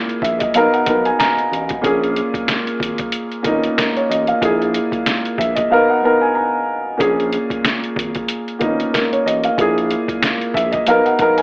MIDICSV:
0, 0, Header, 1, 4, 480
1, 0, Start_track
1, 0, Tempo, 645161
1, 1369, Time_signature, 4, 2, 24, 8
1, 8498, End_track
2, 0, Start_track
2, 0, Title_t, "Upright piano"
2, 0, Program_c, 0, 0
2, 0, Control_c, 0, 64, 127
2, 0, Note_on_c, 0, 46, 91
2, 0, Note_on_c, 0, 58, 86
2, 0, Note_on_c, 0, 64, 85
2, 0, Note_on_c, 0, 68, 99
2, 129, Note_off_c, 0, 46, 0
2, 134, Note_off_c, 0, 58, 0
2, 137, Note_off_c, 0, 64, 0
2, 142, Note_off_c, 0, 68, 0
2, 167, Note_on_c, 0, 76, 74
2, 292, Note_off_c, 0, 76, 0
2, 292, Note_on_c, 0, 75, 72
2, 396, Note_off_c, 0, 75, 0
2, 400, Note_on_c, 0, 47, 87
2, 408, Note_on_c, 0, 59, 89
2, 413, Note_on_c, 0, 77, 81
2, 417, Note_on_c, 0, 63, 86
2, 418, Control_c, 0, 64, 0
2, 425, Note_on_c, 0, 70, 112
2, 535, Note_off_c, 0, 77, 0
2, 536, Control_c, 0, 64, 127
2, 543, Note_on_c, 0, 78, 71
2, 602, Note_off_c, 0, 47, 0
2, 606, Note_off_c, 0, 59, 0
2, 610, Note_off_c, 0, 63, 0
2, 615, Note_off_c, 0, 70, 0
2, 637, Note_on_c, 0, 47, 81
2, 646, Note_on_c, 0, 59, 86
2, 654, Note_on_c, 0, 63, 77
2, 663, Note_on_c, 0, 70, 99
2, 766, Note_off_c, 0, 78, 0
2, 783, Note_on_c, 0, 80, 75
2, 882, Note_off_c, 0, 80, 0
2, 886, Note_on_c, 0, 82, 83
2, 1155, Note_off_c, 0, 47, 0
2, 1160, Note_off_c, 0, 59, 0
2, 1164, Note_off_c, 0, 63, 0
2, 1168, Note_off_c, 0, 70, 0
2, 1338, Note_off_c, 0, 82, 0
2, 1351, Note_on_c, 0, 46, 92
2, 1360, Note_on_c, 0, 58, 78
2, 1368, Note_on_c, 0, 61, 84
2, 1377, Note_on_c, 0, 68, 101
2, 1378, Control_c, 0, 64, 0
2, 1485, Control_c, 0, 64, 127
2, 2043, Note_off_c, 0, 46, 0
2, 2047, Note_off_c, 0, 58, 0
2, 2052, Note_off_c, 0, 61, 0
2, 2056, Note_off_c, 0, 68, 0
2, 2551, Note_on_c, 0, 46, 92
2, 2559, Note_on_c, 0, 58, 80
2, 2568, Note_on_c, 0, 59, 63
2, 2576, Note_on_c, 0, 63, 93
2, 2616, Note_on_c, 0, 61, 77
2, 2622, Note_off_c, 0, 59, 0
2, 2807, Note_on_c, 0, 70, 66
2, 2935, Note_off_c, 0, 70, 0
2, 2951, Note_on_c, 0, 73, 71
2, 3048, Note_off_c, 0, 73, 0
2, 3050, Note_on_c, 0, 75, 75
2, 3072, Note_off_c, 0, 46, 0
2, 3076, Note_off_c, 0, 58, 0
2, 3084, Note_off_c, 0, 63, 0
2, 3104, Note_off_c, 0, 61, 0
2, 3176, Note_off_c, 0, 75, 0
2, 3185, Note_on_c, 0, 77, 68
2, 3283, Note_on_c, 0, 46, 88
2, 3291, Note_on_c, 0, 58, 82
2, 3299, Control_c, 0, 64, 0
2, 3300, Note_on_c, 0, 64, 82
2, 3308, Note_on_c, 0, 68, 99
2, 3412, Note_off_c, 0, 77, 0
2, 3414, Control_c, 0, 64, 127
2, 3969, Note_off_c, 0, 46, 0
2, 3973, Note_off_c, 0, 58, 0
2, 3978, Note_off_c, 0, 64, 0
2, 3982, Note_off_c, 0, 68, 0
2, 4006, Note_on_c, 0, 76, 74
2, 4131, Note_on_c, 0, 75, 75
2, 4132, Note_off_c, 0, 76, 0
2, 4235, Note_off_c, 0, 75, 0
2, 4241, Note_on_c, 0, 47, 89
2, 4250, Note_on_c, 0, 59, 91
2, 4254, Note_on_c, 0, 77, 80
2, 4258, Note_on_c, 0, 63, 86
2, 4260, Control_c, 0, 64, 0
2, 4266, Note_on_c, 0, 70, 109
2, 4376, Note_off_c, 0, 77, 0
2, 4384, Note_on_c, 0, 78, 73
2, 4398, Control_c, 0, 64, 127
2, 4442, Note_off_c, 0, 47, 0
2, 4447, Note_off_c, 0, 59, 0
2, 4451, Note_off_c, 0, 63, 0
2, 4455, Note_off_c, 0, 70, 0
2, 4478, Note_on_c, 0, 47, 77
2, 4487, Note_on_c, 0, 59, 86
2, 4495, Note_on_c, 0, 63, 78
2, 4503, Note_on_c, 0, 70, 102
2, 4607, Note_off_c, 0, 78, 0
2, 4622, Note_on_c, 0, 80, 76
2, 4721, Note_off_c, 0, 80, 0
2, 4724, Note_on_c, 0, 82, 80
2, 4996, Note_off_c, 0, 47, 0
2, 5000, Note_off_c, 0, 59, 0
2, 5004, Note_off_c, 0, 63, 0
2, 5008, Note_off_c, 0, 70, 0
2, 5177, Note_off_c, 0, 82, 0
2, 5189, Note_on_c, 0, 46, 88
2, 5197, Note_on_c, 0, 58, 82
2, 5206, Note_on_c, 0, 61, 82
2, 5214, Note_on_c, 0, 68, 101
2, 5219, Control_c, 0, 64, 0
2, 5336, Control_c, 0, 64, 127
2, 5882, Note_off_c, 0, 46, 0
2, 5886, Note_off_c, 0, 58, 0
2, 5891, Note_off_c, 0, 61, 0
2, 5895, Note_off_c, 0, 68, 0
2, 6392, Note_on_c, 0, 46, 89
2, 6400, Note_on_c, 0, 58, 80
2, 6409, Note_on_c, 0, 59, 63
2, 6416, Note_on_c, 0, 63, 90
2, 6456, Note_on_c, 0, 61, 76
2, 6463, Note_off_c, 0, 59, 0
2, 6647, Note_on_c, 0, 70, 69
2, 6775, Note_off_c, 0, 70, 0
2, 6792, Note_on_c, 0, 73, 69
2, 6888, Note_off_c, 0, 73, 0
2, 6890, Note_on_c, 0, 75, 75
2, 6912, Note_off_c, 0, 46, 0
2, 6916, Note_off_c, 0, 58, 0
2, 6924, Note_off_c, 0, 63, 0
2, 6945, Note_off_c, 0, 61, 0
2, 7017, Note_off_c, 0, 75, 0
2, 7026, Note_on_c, 0, 77, 65
2, 7125, Note_on_c, 0, 46, 88
2, 7133, Note_on_c, 0, 58, 86
2, 7138, Control_c, 0, 64, 0
2, 7142, Note_on_c, 0, 64, 80
2, 7150, Note_on_c, 0, 68, 101
2, 7252, Note_off_c, 0, 77, 0
2, 7268, Control_c, 0, 64, 127
2, 7810, Note_off_c, 0, 46, 0
2, 7814, Note_off_c, 0, 58, 0
2, 7819, Note_off_c, 0, 64, 0
2, 7823, Note_off_c, 0, 68, 0
2, 7849, Note_on_c, 0, 76, 77
2, 7973, Note_off_c, 0, 76, 0
2, 7974, Note_on_c, 0, 75, 73
2, 8077, Note_off_c, 0, 75, 0
2, 8082, Note_on_c, 0, 47, 90
2, 8091, Note_on_c, 0, 59, 87
2, 8094, Note_on_c, 0, 77, 83
2, 8098, Control_c, 0, 64, 0
2, 8099, Note_on_c, 0, 63, 85
2, 8108, Note_on_c, 0, 70, 108
2, 8216, Note_off_c, 0, 77, 0
2, 8218, Control_c, 0, 64, 127
2, 8224, Note_on_c, 0, 78, 75
2, 8283, Note_off_c, 0, 47, 0
2, 8287, Note_off_c, 0, 59, 0
2, 8292, Note_off_c, 0, 63, 0
2, 8296, Note_off_c, 0, 70, 0
2, 8318, Note_on_c, 0, 47, 83
2, 8327, Note_on_c, 0, 59, 83
2, 8335, Note_on_c, 0, 63, 80
2, 8344, Note_on_c, 0, 70, 105
2, 8446, Note_off_c, 0, 78, 0
2, 8464, Note_on_c, 0, 80, 76
2, 8498, Note_off_c, 0, 47, 0
2, 8498, Note_off_c, 0, 59, 0
2, 8498, Note_off_c, 0, 63, 0
2, 8498, Note_off_c, 0, 70, 0
2, 8498, Note_off_c, 0, 80, 0
2, 8498, End_track
3, 0, Start_track
3, 0, Title_t, "Analog synth bass"
3, 0, Program_c, 1, 38
3, 164, Note_on_c, 1, 34, 84
3, 346, Note_off_c, 1, 34, 0
3, 410, Note_on_c, 1, 35, 104
3, 510, Note_off_c, 1, 35, 0
3, 544, Note_on_c, 1, 35, 48
3, 586, Note_off_c, 1, 35, 0
3, 649, Note_on_c, 1, 35, 91
3, 829, Note_off_c, 1, 35, 0
3, 1129, Note_on_c, 1, 33, 102
3, 1310, Note_off_c, 1, 33, 0
3, 1368, Note_on_c, 1, 34, 104
3, 1650, Note_off_c, 1, 34, 0
3, 2084, Note_on_c, 1, 32, 86
3, 2266, Note_off_c, 1, 32, 0
3, 2568, Note_on_c, 1, 32, 96
3, 2749, Note_off_c, 1, 32, 0
3, 3049, Note_on_c, 1, 33, 95
3, 3230, Note_off_c, 1, 33, 0
3, 3288, Note_on_c, 1, 34, 108
3, 3570, Note_off_c, 1, 34, 0
3, 4005, Note_on_c, 1, 34, 82
3, 4187, Note_off_c, 1, 34, 0
3, 5209, Note_on_c, 1, 34, 102
3, 5490, Note_off_c, 1, 34, 0
3, 5925, Note_on_c, 1, 32, 85
3, 6107, Note_off_c, 1, 32, 0
3, 6409, Note_on_c, 1, 32, 93
3, 6589, Note_off_c, 1, 32, 0
3, 6889, Note_on_c, 1, 33, 97
3, 7070, Note_off_c, 1, 33, 0
3, 7129, Note_on_c, 1, 34, 108
3, 7410, Note_off_c, 1, 34, 0
3, 7845, Note_on_c, 1, 34, 82
3, 8027, Note_off_c, 1, 34, 0
3, 8092, Note_on_c, 1, 35, 109
3, 8191, Note_off_c, 1, 35, 0
3, 8226, Note_on_c, 1, 35, 50
3, 8268, Note_off_c, 1, 35, 0
3, 8328, Note_on_c, 1, 35, 94
3, 8498, Note_off_c, 1, 35, 0
3, 8498, End_track
4, 0, Start_track
4, 0, Title_t, "Drums"
4, 69, Note_on_c, 9, 42, 37
4, 144, Note_off_c, 9, 42, 0
4, 164, Note_on_c, 9, 36, 102
4, 182, Note_on_c, 9, 42, 75
4, 238, Note_off_c, 9, 36, 0
4, 257, Note_off_c, 9, 42, 0
4, 300, Note_on_c, 9, 42, 60
4, 308, Note_on_c, 9, 36, 91
4, 374, Note_off_c, 9, 42, 0
4, 382, Note_off_c, 9, 36, 0
4, 403, Note_on_c, 9, 42, 108
4, 477, Note_off_c, 9, 42, 0
4, 548, Note_on_c, 9, 42, 37
4, 623, Note_off_c, 9, 42, 0
4, 643, Note_on_c, 9, 42, 81
4, 647, Note_on_c, 9, 36, 105
4, 717, Note_off_c, 9, 42, 0
4, 722, Note_off_c, 9, 36, 0
4, 784, Note_on_c, 9, 42, 48
4, 859, Note_off_c, 9, 42, 0
4, 891, Note_on_c, 9, 40, 79
4, 894, Note_on_c, 9, 42, 93
4, 896, Note_on_c, 9, 38, 101
4, 965, Note_off_c, 9, 40, 0
4, 969, Note_off_c, 9, 42, 0
4, 971, Note_off_c, 9, 38, 0
4, 1030, Note_on_c, 9, 42, 38
4, 1104, Note_off_c, 9, 42, 0
4, 1141, Note_on_c, 9, 42, 74
4, 1215, Note_off_c, 9, 42, 0
4, 1259, Note_on_c, 9, 42, 51
4, 1268, Note_on_c, 9, 36, 98
4, 1333, Note_off_c, 9, 42, 0
4, 1342, Note_off_c, 9, 36, 0
4, 1368, Note_on_c, 9, 36, 122
4, 1371, Note_on_c, 9, 42, 91
4, 1442, Note_off_c, 9, 36, 0
4, 1445, Note_off_c, 9, 42, 0
4, 1514, Note_on_c, 9, 42, 37
4, 1589, Note_off_c, 9, 42, 0
4, 1610, Note_on_c, 9, 42, 77
4, 1684, Note_off_c, 9, 42, 0
4, 1741, Note_on_c, 9, 36, 97
4, 1747, Note_on_c, 9, 42, 44
4, 1815, Note_off_c, 9, 36, 0
4, 1821, Note_off_c, 9, 42, 0
4, 1846, Note_on_c, 9, 40, 94
4, 1847, Note_on_c, 9, 42, 101
4, 1852, Note_on_c, 9, 38, 119
4, 1921, Note_off_c, 9, 40, 0
4, 1921, Note_off_c, 9, 42, 0
4, 1926, Note_off_c, 9, 38, 0
4, 1988, Note_on_c, 9, 42, 38
4, 2062, Note_off_c, 9, 42, 0
4, 2084, Note_on_c, 9, 36, 103
4, 2103, Note_on_c, 9, 42, 77
4, 2158, Note_off_c, 9, 36, 0
4, 2177, Note_off_c, 9, 42, 0
4, 2219, Note_on_c, 9, 42, 59
4, 2227, Note_on_c, 9, 36, 90
4, 2293, Note_off_c, 9, 42, 0
4, 2302, Note_off_c, 9, 36, 0
4, 2323, Note_on_c, 9, 42, 105
4, 2397, Note_off_c, 9, 42, 0
4, 2467, Note_on_c, 9, 42, 37
4, 2541, Note_off_c, 9, 42, 0
4, 2563, Note_on_c, 9, 42, 82
4, 2567, Note_on_c, 9, 36, 104
4, 2637, Note_off_c, 9, 42, 0
4, 2641, Note_off_c, 9, 36, 0
4, 2704, Note_on_c, 9, 42, 46
4, 2779, Note_off_c, 9, 42, 0
4, 2812, Note_on_c, 9, 40, 85
4, 2816, Note_on_c, 9, 42, 94
4, 2818, Note_on_c, 9, 38, 104
4, 2887, Note_off_c, 9, 40, 0
4, 2890, Note_off_c, 9, 42, 0
4, 2892, Note_off_c, 9, 38, 0
4, 2950, Note_on_c, 9, 42, 38
4, 3025, Note_off_c, 9, 42, 0
4, 3062, Note_on_c, 9, 42, 75
4, 3136, Note_off_c, 9, 42, 0
4, 3179, Note_on_c, 9, 42, 52
4, 3254, Note_off_c, 9, 42, 0
4, 3288, Note_on_c, 9, 36, 123
4, 3292, Note_on_c, 9, 42, 90
4, 3362, Note_off_c, 9, 36, 0
4, 3366, Note_off_c, 9, 42, 0
4, 3435, Note_on_c, 9, 42, 36
4, 3509, Note_off_c, 9, 42, 0
4, 3530, Note_on_c, 9, 42, 75
4, 3604, Note_off_c, 9, 42, 0
4, 3661, Note_on_c, 9, 36, 97
4, 3668, Note_on_c, 9, 42, 43
4, 3736, Note_off_c, 9, 36, 0
4, 3743, Note_off_c, 9, 42, 0
4, 3767, Note_on_c, 9, 40, 94
4, 3768, Note_on_c, 9, 42, 97
4, 3773, Note_on_c, 9, 38, 122
4, 3842, Note_off_c, 9, 40, 0
4, 3842, Note_off_c, 9, 42, 0
4, 3847, Note_off_c, 9, 38, 0
4, 3909, Note_on_c, 9, 42, 38
4, 3983, Note_off_c, 9, 42, 0
4, 4004, Note_on_c, 9, 36, 103
4, 4023, Note_on_c, 9, 42, 76
4, 4078, Note_off_c, 9, 36, 0
4, 4098, Note_off_c, 9, 42, 0
4, 4140, Note_on_c, 9, 42, 61
4, 4148, Note_on_c, 9, 36, 91
4, 4215, Note_off_c, 9, 42, 0
4, 4222, Note_off_c, 9, 36, 0
4, 5209, Note_on_c, 9, 36, 127
4, 5212, Note_on_c, 9, 42, 85
4, 5283, Note_off_c, 9, 36, 0
4, 5287, Note_off_c, 9, 42, 0
4, 5355, Note_on_c, 9, 42, 36
4, 5430, Note_off_c, 9, 42, 0
4, 5450, Note_on_c, 9, 42, 80
4, 5525, Note_off_c, 9, 42, 0
4, 5582, Note_on_c, 9, 36, 91
4, 5588, Note_on_c, 9, 42, 42
4, 5656, Note_off_c, 9, 36, 0
4, 5663, Note_off_c, 9, 42, 0
4, 5688, Note_on_c, 9, 40, 98
4, 5689, Note_on_c, 9, 42, 99
4, 5694, Note_on_c, 9, 38, 124
4, 5763, Note_off_c, 9, 40, 0
4, 5763, Note_off_c, 9, 42, 0
4, 5768, Note_off_c, 9, 38, 0
4, 5830, Note_on_c, 9, 42, 38
4, 5905, Note_off_c, 9, 42, 0
4, 5925, Note_on_c, 9, 36, 106
4, 5944, Note_on_c, 9, 42, 77
4, 5999, Note_off_c, 9, 36, 0
4, 6018, Note_off_c, 9, 42, 0
4, 6061, Note_on_c, 9, 42, 61
4, 6069, Note_on_c, 9, 36, 92
4, 6135, Note_off_c, 9, 42, 0
4, 6143, Note_off_c, 9, 36, 0
4, 6164, Note_on_c, 9, 42, 105
4, 6238, Note_off_c, 9, 42, 0
4, 6309, Note_on_c, 9, 42, 38
4, 6383, Note_off_c, 9, 42, 0
4, 6404, Note_on_c, 9, 42, 80
4, 6408, Note_on_c, 9, 36, 104
4, 6478, Note_off_c, 9, 42, 0
4, 6482, Note_off_c, 9, 36, 0
4, 6546, Note_on_c, 9, 42, 45
4, 6620, Note_off_c, 9, 42, 0
4, 6653, Note_on_c, 9, 40, 82
4, 6657, Note_on_c, 9, 42, 92
4, 6659, Note_on_c, 9, 38, 101
4, 6727, Note_off_c, 9, 40, 0
4, 6731, Note_off_c, 9, 42, 0
4, 6733, Note_off_c, 9, 38, 0
4, 6792, Note_on_c, 9, 42, 39
4, 6866, Note_off_c, 9, 42, 0
4, 6902, Note_on_c, 9, 42, 76
4, 6976, Note_off_c, 9, 42, 0
4, 7020, Note_on_c, 9, 42, 54
4, 7094, Note_off_c, 9, 42, 0
4, 7128, Note_on_c, 9, 36, 127
4, 7132, Note_on_c, 9, 42, 91
4, 7203, Note_off_c, 9, 36, 0
4, 7206, Note_off_c, 9, 42, 0
4, 7275, Note_on_c, 9, 42, 37
4, 7350, Note_off_c, 9, 42, 0
4, 7370, Note_on_c, 9, 42, 78
4, 7444, Note_off_c, 9, 42, 0
4, 7502, Note_on_c, 9, 36, 95
4, 7508, Note_on_c, 9, 42, 44
4, 7576, Note_off_c, 9, 36, 0
4, 7582, Note_off_c, 9, 42, 0
4, 7608, Note_on_c, 9, 40, 97
4, 7608, Note_on_c, 9, 42, 99
4, 7613, Note_on_c, 9, 38, 121
4, 7682, Note_off_c, 9, 40, 0
4, 7683, Note_off_c, 9, 42, 0
4, 7688, Note_off_c, 9, 38, 0
4, 7748, Note_on_c, 9, 42, 39
4, 7822, Note_off_c, 9, 42, 0
4, 7844, Note_on_c, 9, 36, 102
4, 7862, Note_on_c, 9, 42, 77
4, 7918, Note_off_c, 9, 36, 0
4, 7937, Note_off_c, 9, 42, 0
4, 7980, Note_on_c, 9, 42, 59
4, 7988, Note_on_c, 9, 36, 90
4, 8054, Note_off_c, 9, 42, 0
4, 8063, Note_off_c, 9, 36, 0
4, 8084, Note_on_c, 9, 42, 104
4, 8158, Note_off_c, 9, 42, 0
4, 8228, Note_on_c, 9, 42, 37
4, 8302, Note_off_c, 9, 42, 0
4, 8324, Note_on_c, 9, 42, 82
4, 8328, Note_on_c, 9, 36, 101
4, 8398, Note_off_c, 9, 42, 0
4, 8402, Note_off_c, 9, 36, 0
4, 8465, Note_on_c, 9, 42, 46
4, 8498, Note_off_c, 9, 42, 0
4, 8498, End_track
0, 0, End_of_file